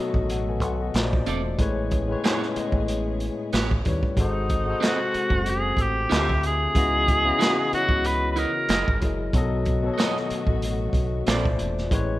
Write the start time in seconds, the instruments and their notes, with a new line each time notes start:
Already playing: tine electric piano B2 F#3 A4 D#5, string section D#3 A3 B3 F#4
0.14 fingered electric bass A1, kick
0.30 tine electric piano A4 F#5, closed hi-hat
0.49 tine electric piano B4 G#5
0.60 fingered electric bass B1, tine electric piano F#5, kick, closed hi-hat
0.65 tine electric piano A4
0.82 tine electric piano F#4 D#5
0.94 fingered electric bass A#1, tine electric piano A#2 A3 C5, string section A#2 C3 D4, snare, clap, closed hi-hat
0.99 tine electric piano D5
1.13 kick
1.26 fingered electric bass E1, clean electric guitar C4 F4 A4 D5, closed hi-hat
1.58 fingered electric bass A1, tine electric piano A2 G#3 B4 C#5, string section C#3 G#3 B3 G#4, kick, closed hi-hat
1.91 kick, closed hi-hat
2.08 tine electric piano A2 G#3 B4
2.12 tine electric piano C#5
2.24 clean electric guitar B3 E4 G#4 C#5, snare, clap, closed hi-hat
2.43 snare
2.56 tine electric piano A2 G#3 B4, muted fingered electric bass stroke, closed hi-hat
2.60 tine electric piano D#5
2.72 fingered electric bass A1, kick
2.88 closed hi-hat
3.20 closed hi-hat
3.53 fingered electric bass A1, string section C#3 A3 G4, clean electric guitar B3 E4 G4 C#5, snare, clap, closed hi-hat
3.71 kick
3.85 fingered electric bass D#2, tine electric piano A2 G3 B4 C#5, kick, closed hi-hat
4.03 kick
4.17 fingered electric bass G#1, string section C3 G#3 C4 F#5, tine electric piano G#3 F#4 A4, kick, closed hi-hat
4.21 tenor saxophone D#4, tine electric piano C5
4.50 kick, closed hi-hat
4.66 tine electric piano G#3 F#4 A4
4.70 tine electric piano C5
4.81 clean electric guitar C4 F#4 A4 D#5, snare, closed hi-hat
4.85 tenor saxophone F#4, clap
5.14 muted fingered electric bass stroke, closed hi-hat
5.30 fingered electric bass F#1, kick
5.46 tenor saxophone G#4, closed hi-hat
5.77 fingered electric bass A1, kick, closed hi-hat
5.81 tenor saxophone G4
6.10 fingered electric bass D2, tine electric piano D3 C4 F4 G4, string section F3 A3, clean electric guitar F4 G4 C5 E5, snare, clap, closed hi-hat
6.14 tine electric piano E5
6.29 kick
6.43 tenor saxophone G#4, closed hi-hat
6.74 fingered electric bass C#2, tine electric piano C#3 B3 E4 F#4, string section E3 F#3 B3, kick, closed hi-hat
6.79 tine electric piano D#5
7.08 kick, closed hi-hat
7.24 tine electric piano C#3 B3 E4 F#4
7.28 tine electric piano D#5
7.39 clean electric guitar E4 F#4 B4 D#5, snare, clap, closed hi-hat
7.72 tine electric piano C#3 B3 E4 F#4, tenor saxophone F#4, muted fingered electric bass stroke, closed hi-hat
7.77 tine electric piano C#5
7.89 fingered electric bass C#2, kick
8.05 tenor saxophone B4, closed hi-hat
8.32 tenor saxophone B4
8.36 clean electric guitar E4 F#4 B4 D#5, tenor saxophone A#4, closed hi-hat
8.69 fingered electric bass F#1, string section G#3 A#3, clean electric guitar E4 G#4 A#4 D#5, snare, clap, closed hi-hat
8.88 fingered electric bass G#1, kick
9.01 fingered electric bass F#1, tine electric piano F#3 E4 G#4 A#4, kick, closed hi-hat
9.05 tine electric piano D#5
9.33 fingered electric bass B1, tine electric piano B2 F#3 A4, string section D#3 A3 B3 F#4, kick, closed hi-hat
9.38 tine electric piano D#5
9.65 kick, closed hi-hat
9.83 tine electric piano B2 F#3 A4
9.87 tine electric piano C#5
9.94 tine electric piano D#5
9.98 clean electric guitar B3 F#4 A4 D#5, snare, clap, closed hi-hat
10.17 snare
10.30 muted fingered electric bass stroke, closed hi-hat
10.47 fingered electric bass A1, kick
10.62 closed hi-hat
10.93 fingered electric bass B1, kick, closed hi-hat
11.25 fingered electric bass A#1, string section A#2 C3 D4, tine electric piano A#2 A3, clean electric guitar C4 F4 A4, snare, clap, closed hi-hat
11.29 tine electric piano C5 D5, clean electric guitar D5
11.45 kick
11.59 fingered electric bass E1, closed hi-hat
11.78 snare
11.90 fingered electric bass A1, string section A2 G#3 B3 C#4, tine electric piano A2 G#3 B4, kick, closed hi-hat
11.95 tine electric piano C#5